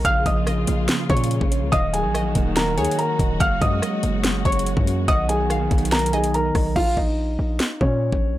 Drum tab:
CC |------------------------------------------------|------------------------------------------------|------------------------------------------------|------------------------------------------------|
HH |x-----x-----x-----x-----x-----x-x-x-x-----x-----|x-----x-----x-----x-----x-----x-x-x-x-----x-----|x-----x-----x-----x-----x-----x-x-x-x-----x-----|x-----x-----x-----x-x-x-x-x-x-x--x--x-----o-----|
SD |------------r-----------o-----------------------|------------r-----------o-----------------------|------------r-----------o-----------------------|------------r-----------o-----------------r-----|
BD |o-----o-----------------------o--------o--------|o-----------------o-----------------------o-----|o-----o-----------------------o--------o--------|o-----------------o-----------------------o-----|

CC |x-----------------------------------------------|
HH |------------------------------------------------|
SD |------------------------o-----------------------|
BD |o-----o-----------------------o--------o--------|